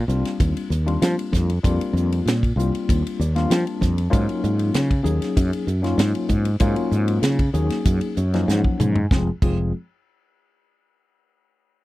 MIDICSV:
0, 0, Header, 1, 5, 480
1, 0, Start_track
1, 0, Tempo, 622407
1, 1267, Time_signature, 4, 2, 24, 8
1, 9134, End_track
2, 0, Start_track
2, 0, Title_t, "Tine electric piano"
2, 0, Program_c, 0, 4
2, 65, Note_on_c, 0, 55, 76
2, 65, Note_on_c, 0, 58, 65
2, 66, Note_on_c, 0, 60, 74
2, 67, Note_on_c, 0, 65, 87
2, 71, Note_on_c, 0, 62, 73
2, 555, Note_off_c, 0, 55, 0
2, 555, Note_off_c, 0, 58, 0
2, 556, Note_off_c, 0, 60, 0
2, 556, Note_off_c, 0, 65, 0
2, 558, Note_off_c, 0, 62, 0
2, 664, Note_on_c, 0, 58, 76
2, 667, Note_on_c, 0, 60, 77
2, 667, Note_on_c, 0, 62, 80
2, 668, Note_on_c, 0, 55, 84
2, 673, Note_on_c, 0, 65, 96
2, 1155, Note_off_c, 0, 58, 0
2, 1157, Note_off_c, 0, 55, 0
2, 1157, Note_off_c, 0, 60, 0
2, 1157, Note_off_c, 0, 62, 0
2, 1159, Note_off_c, 0, 65, 0
2, 1260, Note_on_c, 0, 55, 98
2, 1260, Note_on_c, 0, 58, 92
2, 1260, Note_on_c, 0, 62, 83
2, 1262, Note_on_c, 0, 60, 89
2, 1263, Note_on_c, 0, 65, 101
2, 1851, Note_off_c, 0, 62, 0
2, 1852, Note_off_c, 0, 55, 0
2, 1852, Note_off_c, 0, 58, 0
2, 1853, Note_off_c, 0, 60, 0
2, 1853, Note_off_c, 0, 65, 0
2, 1981, Note_on_c, 0, 55, 82
2, 1981, Note_on_c, 0, 58, 73
2, 1982, Note_on_c, 0, 62, 67
2, 1983, Note_on_c, 0, 60, 75
2, 1986, Note_on_c, 0, 65, 90
2, 2472, Note_off_c, 0, 55, 0
2, 2472, Note_off_c, 0, 58, 0
2, 2473, Note_off_c, 0, 60, 0
2, 2473, Note_off_c, 0, 62, 0
2, 2474, Note_on_c, 0, 74, 64
2, 2475, Note_off_c, 0, 65, 0
2, 2584, Note_off_c, 0, 74, 0
2, 2584, Note_on_c, 0, 55, 86
2, 2587, Note_on_c, 0, 58, 84
2, 2590, Note_on_c, 0, 60, 79
2, 2591, Note_on_c, 0, 65, 99
2, 2593, Note_on_c, 0, 77, 64
2, 2596, Note_on_c, 0, 62, 81
2, 2701, Note_off_c, 0, 77, 0
2, 2818, Note_on_c, 0, 81, 62
2, 3074, Note_off_c, 0, 55, 0
2, 3076, Note_off_c, 0, 58, 0
2, 3078, Note_off_c, 0, 60, 0
2, 3078, Note_off_c, 0, 65, 0
2, 3081, Note_off_c, 0, 62, 0
2, 3155, Note_off_c, 0, 81, 0
2, 3163, Note_on_c, 0, 58, 94
2, 3164, Note_on_c, 0, 54, 102
2, 3165, Note_on_c, 0, 63, 93
2, 3168, Note_on_c, 0, 61, 96
2, 3170, Note_on_c, 0, 65, 114
2, 3763, Note_off_c, 0, 54, 0
2, 3763, Note_off_c, 0, 58, 0
2, 3764, Note_off_c, 0, 63, 0
2, 3765, Note_off_c, 0, 61, 0
2, 3766, Note_off_c, 0, 65, 0
2, 3879, Note_on_c, 0, 61, 75
2, 3880, Note_on_c, 0, 58, 71
2, 3884, Note_on_c, 0, 54, 78
2, 3885, Note_on_c, 0, 63, 75
2, 3888, Note_on_c, 0, 68, 98
2, 4381, Note_off_c, 0, 61, 0
2, 4382, Note_off_c, 0, 58, 0
2, 4384, Note_off_c, 0, 54, 0
2, 4384, Note_off_c, 0, 63, 0
2, 4386, Note_off_c, 0, 68, 0
2, 4490, Note_on_c, 0, 54, 91
2, 4494, Note_on_c, 0, 61, 84
2, 4497, Note_on_c, 0, 58, 82
2, 4497, Note_on_c, 0, 63, 81
2, 4502, Note_on_c, 0, 65, 98
2, 4988, Note_off_c, 0, 54, 0
2, 4990, Note_off_c, 0, 61, 0
2, 4991, Note_off_c, 0, 58, 0
2, 4991, Note_off_c, 0, 63, 0
2, 4993, Note_off_c, 0, 65, 0
2, 5093, Note_on_c, 0, 65, 113
2, 5095, Note_on_c, 0, 54, 105
2, 5095, Note_on_c, 0, 58, 102
2, 5096, Note_on_c, 0, 61, 99
2, 5098, Note_on_c, 0, 63, 94
2, 5688, Note_off_c, 0, 65, 0
2, 5689, Note_off_c, 0, 54, 0
2, 5689, Note_off_c, 0, 58, 0
2, 5689, Note_off_c, 0, 61, 0
2, 5691, Note_off_c, 0, 63, 0
2, 5809, Note_on_c, 0, 58, 72
2, 5811, Note_on_c, 0, 54, 86
2, 5815, Note_on_c, 0, 63, 79
2, 5815, Note_on_c, 0, 68, 95
2, 5816, Note_on_c, 0, 61, 78
2, 6303, Note_on_c, 0, 73, 69
2, 6307, Note_off_c, 0, 58, 0
2, 6308, Note_off_c, 0, 54, 0
2, 6310, Note_off_c, 0, 61, 0
2, 6310, Note_off_c, 0, 63, 0
2, 6310, Note_off_c, 0, 68, 0
2, 6419, Note_off_c, 0, 73, 0
2, 6429, Note_on_c, 0, 58, 80
2, 6430, Note_on_c, 0, 61, 84
2, 6431, Note_on_c, 0, 75, 69
2, 6432, Note_on_c, 0, 54, 93
2, 6434, Note_on_c, 0, 53, 100
2, 6435, Note_on_c, 0, 63, 83
2, 6540, Note_off_c, 0, 75, 0
2, 6553, Note_on_c, 0, 78, 70
2, 6773, Note_off_c, 0, 78, 0
2, 6787, Note_on_c, 0, 80, 60
2, 6918, Note_off_c, 0, 58, 0
2, 6918, Note_off_c, 0, 61, 0
2, 6919, Note_off_c, 0, 54, 0
2, 6920, Note_off_c, 0, 53, 0
2, 6921, Note_off_c, 0, 63, 0
2, 7010, Note_off_c, 0, 80, 0
2, 7025, Note_on_c, 0, 60, 74
2, 7027, Note_on_c, 0, 53, 81
2, 7031, Note_on_c, 0, 56, 74
2, 7032, Note_on_c, 0, 68, 89
2, 7033, Note_on_c, 0, 65, 76
2, 7162, Note_off_c, 0, 60, 0
2, 7163, Note_off_c, 0, 53, 0
2, 7165, Note_off_c, 0, 56, 0
2, 7166, Note_off_c, 0, 65, 0
2, 7166, Note_off_c, 0, 68, 0
2, 7269, Note_on_c, 0, 53, 81
2, 7269, Note_on_c, 0, 56, 73
2, 7270, Note_on_c, 0, 68, 85
2, 7272, Note_on_c, 0, 60, 74
2, 7275, Note_on_c, 0, 65, 73
2, 7491, Note_off_c, 0, 56, 0
2, 7492, Note_off_c, 0, 53, 0
2, 7492, Note_off_c, 0, 68, 0
2, 7493, Note_off_c, 0, 60, 0
2, 7495, Note_off_c, 0, 65, 0
2, 9134, End_track
3, 0, Start_track
3, 0, Title_t, "Fretless electric bass"
3, 0, Program_c, 1, 35
3, 62, Note_on_c, 1, 36, 80
3, 165, Note_off_c, 1, 36, 0
3, 309, Note_on_c, 1, 39, 92
3, 409, Note_off_c, 1, 39, 0
3, 542, Note_on_c, 1, 39, 80
3, 741, Note_off_c, 1, 39, 0
3, 786, Note_on_c, 1, 53, 91
3, 887, Note_off_c, 1, 53, 0
3, 1022, Note_on_c, 1, 41, 87
3, 1221, Note_off_c, 1, 41, 0
3, 1265, Note_on_c, 1, 41, 90
3, 1366, Note_off_c, 1, 41, 0
3, 1492, Note_on_c, 1, 41, 87
3, 1694, Note_off_c, 1, 41, 0
3, 1741, Note_on_c, 1, 46, 83
3, 1940, Note_off_c, 1, 46, 0
3, 1974, Note_on_c, 1, 36, 86
3, 2079, Note_off_c, 1, 36, 0
3, 2231, Note_on_c, 1, 39, 92
3, 2330, Note_off_c, 1, 39, 0
3, 2464, Note_on_c, 1, 39, 78
3, 2661, Note_off_c, 1, 39, 0
3, 2701, Note_on_c, 1, 53, 89
3, 2803, Note_off_c, 1, 53, 0
3, 2940, Note_on_c, 1, 41, 88
3, 3139, Note_off_c, 1, 41, 0
3, 3184, Note_on_c, 1, 44, 98
3, 3285, Note_off_c, 1, 44, 0
3, 3422, Note_on_c, 1, 44, 91
3, 3620, Note_off_c, 1, 44, 0
3, 3659, Note_on_c, 1, 49, 78
3, 3858, Note_off_c, 1, 49, 0
3, 3890, Note_on_c, 1, 39, 88
3, 3997, Note_off_c, 1, 39, 0
3, 4141, Note_on_c, 1, 42, 96
3, 4243, Note_off_c, 1, 42, 0
3, 4374, Note_on_c, 1, 42, 81
3, 4575, Note_off_c, 1, 42, 0
3, 4611, Note_on_c, 1, 44, 94
3, 4717, Note_off_c, 1, 44, 0
3, 4851, Note_on_c, 1, 44, 91
3, 5054, Note_off_c, 1, 44, 0
3, 5091, Note_on_c, 1, 44, 98
3, 5197, Note_off_c, 1, 44, 0
3, 5333, Note_on_c, 1, 44, 93
3, 5535, Note_off_c, 1, 44, 0
3, 5569, Note_on_c, 1, 49, 86
3, 5773, Note_off_c, 1, 49, 0
3, 5814, Note_on_c, 1, 39, 86
3, 5919, Note_off_c, 1, 39, 0
3, 6059, Note_on_c, 1, 42, 95
3, 6162, Note_off_c, 1, 42, 0
3, 6302, Note_on_c, 1, 42, 81
3, 6501, Note_off_c, 1, 42, 0
3, 6541, Note_on_c, 1, 44, 92
3, 6644, Note_off_c, 1, 44, 0
3, 6784, Note_on_c, 1, 44, 89
3, 6982, Note_off_c, 1, 44, 0
3, 7025, Note_on_c, 1, 29, 97
3, 7162, Note_off_c, 1, 29, 0
3, 7264, Note_on_c, 1, 29, 83
3, 7489, Note_off_c, 1, 29, 0
3, 9134, End_track
4, 0, Start_track
4, 0, Title_t, "Muted fretless electric bass strokes"
4, 2099, Note_on_c, 9, 29, 37
4, 2176, Note_off_c, 9, 29, 0
4, 5934, Note_on_c, 9, 29, 39
4, 6011, Note_off_c, 9, 29, 0
4, 9134, End_track
5, 0, Start_track
5, 0, Title_t, "Drums"
5, 69, Note_on_c, 9, 44, 88
5, 146, Note_off_c, 9, 44, 0
5, 195, Note_on_c, 9, 51, 59
5, 203, Note_on_c, 9, 38, 30
5, 272, Note_off_c, 9, 51, 0
5, 280, Note_off_c, 9, 38, 0
5, 309, Note_on_c, 9, 36, 76
5, 310, Note_on_c, 9, 44, 78
5, 310, Note_on_c, 9, 51, 77
5, 386, Note_off_c, 9, 36, 0
5, 387, Note_off_c, 9, 44, 0
5, 387, Note_off_c, 9, 51, 0
5, 436, Note_on_c, 9, 51, 66
5, 514, Note_off_c, 9, 51, 0
5, 549, Note_on_c, 9, 44, 81
5, 626, Note_off_c, 9, 44, 0
5, 676, Note_on_c, 9, 51, 52
5, 753, Note_off_c, 9, 51, 0
5, 788, Note_on_c, 9, 44, 89
5, 788, Note_on_c, 9, 51, 83
5, 796, Note_on_c, 9, 38, 105
5, 865, Note_off_c, 9, 44, 0
5, 865, Note_off_c, 9, 51, 0
5, 873, Note_off_c, 9, 38, 0
5, 917, Note_on_c, 9, 51, 65
5, 994, Note_off_c, 9, 51, 0
5, 1027, Note_on_c, 9, 36, 68
5, 1030, Note_on_c, 9, 44, 81
5, 1039, Note_on_c, 9, 38, 31
5, 1104, Note_off_c, 9, 36, 0
5, 1107, Note_off_c, 9, 44, 0
5, 1116, Note_off_c, 9, 38, 0
5, 1153, Note_on_c, 9, 51, 59
5, 1230, Note_off_c, 9, 51, 0
5, 1268, Note_on_c, 9, 36, 100
5, 1271, Note_on_c, 9, 44, 87
5, 1271, Note_on_c, 9, 51, 82
5, 1345, Note_off_c, 9, 36, 0
5, 1348, Note_off_c, 9, 44, 0
5, 1348, Note_off_c, 9, 51, 0
5, 1396, Note_on_c, 9, 51, 63
5, 1474, Note_off_c, 9, 51, 0
5, 1516, Note_on_c, 9, 44, 80
5, 1593, Note_off_c, 9, 44, 0
5, 1638, Note_on_c, 9, 51, 59
5, 1715, Note_off_c, 9, 51, 0
5, 1754, Note_on_c, 9, 44, 82
5, 1754, Note_on_c, 9, 51, 73
5, 1762, Note_on_c, 9, 38, 106
5, 1831, Note_off_c, 9, 44, 0
5, 1831, Note_off_c, 9, 51, 0
5, 1839, Note_off_c, 9, 38, 0
5, 1874, Note_on_c, 9, 36, 68
5, 1882, Note_on_c, 9, 51, 52
5, 1951, Note_off_c, 9, 36, 0
5, 1959, Note_off_c, 9, 51, 0
5, 1998, Note_on_c, 9, 44, 80
5, 2075, Note_off_c, 9, 44, 0
5, 2118, Note_on_c, 9, 51, 58
5, 2195, Note_off_c, 9, 51, 0
5, 2229, Note_on_c, 9, 36, 76
5, 2235, Note_on_c, 9, 44, 73
5, 2235, Note_on_c, 9, 51, 76
5, 2307, Note_off_c, 9, 36, 0
5, 2312, Note_off_c, 9, 44, 0
5, 2312, Note_off_c, 9, 51, 0
5, 2364, Note_on_c, 9, 51, 62
5, 2441, Note_off_c, 9, 51, 0
5, 2474, Note_on_c, 9, 44, 85
5, 2551, Note_off_c, 9, 44, 0
5, 2591, Note_on_c, 9, 51, 53
5, 2599, Note_on_c, 9, 38, 28
5, 2668, Note_off_c, 9, 51, 0
5, 2676, Note_off_c, 9, 38, 0
5, 2707, Note_on_c, 9, 44, 90
5, 2707, Note_on_c, 9, 51, 83
5, 2715, Note_on_c, 9, 38, 107
5, 2784, Note_off_c, 9, 44, 0
5, 2784, Note_off_c, 9, 51, 0
5, 2792, Note_off_c, 9, 38, 0
5, 2829, Note_on_c, 9, 51, 56
5, 2906, Note_off_c, 9, 51, 0
5, 2945, Note_on_c, 9, 36, 69
5, 2945, Note_on_c, 9, 44, 82
5, 2953, Note_on_c, 9, 38, 30
5, 3022, Note_off_c, 9, 36, 0
5, 3022, Note_off_c, 9, 44, 0
5, 3031, Note_off_c, 9, 38, 0
5, 3069, Note_on_c, 9, 51, 58
5, 3146, Note_off_c, 9, 51, 0
5, 3185, Note_on_c, 9, 36, 113
5, 3186, Note_on_c, 9, 44, 82
5, 3186, Note_on_c, 9, 51, 84
5, 3262, Note_off_c, 9, 36, 0
5, 3263, Note_off_c, 9, 44, 0
5, 3263, Note_off_c, 9, 51, 0
5, 3307, Note_on_c, 9, 51, 59
5, 3384, Note_off_c, 9, 51, 0
5, 3422, Note_on_c, 9, 44, 83
5, 3499, Note_off_c, 9, 44, 0
5, 3541, Note_on_c, 9, 51, 62
5, 3618, Note_off_c, 9, 51, 0
5, 3657, Note_on_c, 9, 44, 81
5, 3657, Note_on_c, 9, 51, 75
5, 3666, Note_on_c, 9, 38, 103
5, 3734, Note_off_c, 9, 44, 0
5, 3734, Note_off_c, 9, 51, 0
5, 3743, Note_off_c, 9, 38, 0
5, 3784, Note_on_c, 9, 36, 70
5, 3784, Note_on_c, 9, 51, 55
5, 3861, Note_off_c, 9, 36, 0
5, 3861, Note_off_c, 9, 51, 0
5, 3896, Note_on_c, 9, 44, 89
5, 3973, Note_off_c, 9, 44, 0
5, 4024, Note_on_c, 9, 51, 64
5, 4033, Note_on_c, 9, 38, 33
5, 4101, Note_off_c, 9, 51, 0
5, 4110, Note_off_c, 9, 38, 0
5, 4140, Note_on_c, 9, 36, 77
5, 4141, Note_on_c, 9, 44, 79
5, 4141, Note_on_c, 9, 51, 83
5, 4217, Note_off_c, 9, 36, 0
5, 4218, Note_off_c, 9, 44, 0
5, 4218, Note_off_c, 9, 51, 0
5, 4265, Note_on_c, 9, 51, 63
5, 4342, Note_off_c, 9, 51, 0
5, 4378, Note_on_c, 9, 44, 89
5, 4455, Note_off_c, 9, 44, 0
5, 4504, Note_on_c, 9, 51, 54
5, 4513, Note_on_c, 9, 38, 29
5, 4581, Note_off_c, 9, 51, 0
5, 4590, Note_off_c, 9, 38, 0
5, 4618, Note_on_c, 9, 44, 85
5, 4618, Note_on_c, 9, 51, 86
5, 4626, Note_on_c, 9, 38, 110
5, 4695, Note_off_c, 9, 44, 0
5, 4695, Note_off_c, 9, 51, 0
5, 4704, Note_off_c, 9, 38, 0
5, 4741, Note_on_c, 9, 51, 58
5, 4819, Note_off_c, 9, 51, 0
5, 4848, Note_on_c, 9, 44, 84
5, 4856, Note_on_c, 9, 36, 69
5, 4926, Note_off_c, 9, 44, 0
5, 4933, Note_off_c, 9, 36, 0
5, 4975, Note_on_c, 9, 51, 69
5, 5052, Note_off_c, 9, 51, 0
5, 5087, Note_on_c, 9, 44, 84
5, 5087, Note_on_c, 9, 51, 82
5, 5095, Note_on_c, 9, 36, 112
5, 5164, Note_off_c, 9, 44, 0
5, 5164, Note_off_c, 9, 51, 0
5, 5172, Note_off_c, 9, 36, 0
5, 5214, Note_on_c, 9, 51, 64
5, 5291, Note_off_c, 9, 51, 0
5, 5337, Note_on_c, 9, 44, 79
5, 5414, Note_off_c, 9, 44, 0
5, 5458, Note_on_c, 9, 51, 66
5, 5535, Note_off_c, 9, 51, 0
5, 5573, Note_on_c, 9, 44, 82
5, 5573, Note_on_c, 9, 51, 86
5, 5582, Note_on_c, 9, 38, 107
5, 5650, Note_off_c, 9, 44, 0
5, 5650, Note_off_c, 9, 51, 0
5, 5659, Note_off_c, 9, 38, 0
5, 5700, Note_on_c, 9, 36, 74
5, 5700, Note_on_c, 9, 51, 63
5, 5777, Note_off_c, 9, 36, 0
5, 5777, Note_off_c, 9, 51, 0
5, 5812, Note_on_c, 9, 44, 92
5, 5889, Note_off_c, 9, 44, 0
5, 5940, Note_on_c, 9, 51, 68
5, 5949, Note_on_c, 9, 38, 33
5, 6018, Note_off_c, 9, 51, 0
5, 6026, Note_off_c, 9, 38, 0
5, 6057, Note_on_c, 9, 44, 79
5, 6057, Note_on_c, 9, 51, 79
5, 6059, Note_on_c, 9, 36, 77
5, 6134, Note_off_c, 9, 44, 0
5, 6134, Note_off_c, 9, 51, 0
5, 6136, Note_off_c, 9, 36, 0
5, 6177, Note_on_c, 9, 51, 61
5, 6254, Note_off_c, 9, 51, 0
5, 6297, Note_on_c, 9, 44, 86
5, 6374, Note_off_c, 9, 44, 0
5, 6429, Note_on_c, 9, 51, 52
5, 6438, Note_on_c, 9, 38, 30
5, 6506, Note_off_c, 9, 51, 0
5, 6515, Note_off_c, 9, 38, 0
5, 6548, Note_on_c, 9, 44, 91
5, 6557, Note_on_c, 9, 38, 65
5, 6625, Note_off_c, 9, 44, 0
5, 6634, Note_off_c, 9, 38, 0
5, 6667, Note_on_c, 9, 36, 61
5, 6744, Note_off_c, 9, 36, 0
5, 6786, Note_on_c, 9, 44, 88
5, 6786, Note_on_c, 9, 45, 82
5, 6863, Note_off_c, 9, 44, 0
5, 6863, Note_off_c, 9, 45, 0
5, 6907, Note_on_c, 9, 43, 84
5, 6984, Note_off_c, 9, 43, 0
5, 7026, Note_on_c, 9, 36, 101
5, 7035, Note_on_c, 9, 38, 86
5, 7103, Note_off_c, 9, 36, 0
5, 7112, Note_off_c, 9, 38, 0
5, 7266, Note_on_c, 9, 36, 100
5, 7267, Note_on_c, 9, 49, 75
5, 7343, Note_off_c, 9, 36, 0
5, 7345, Note_off_c, 9, 49, 0
5, 9134, End_track
0, 0, End_of_file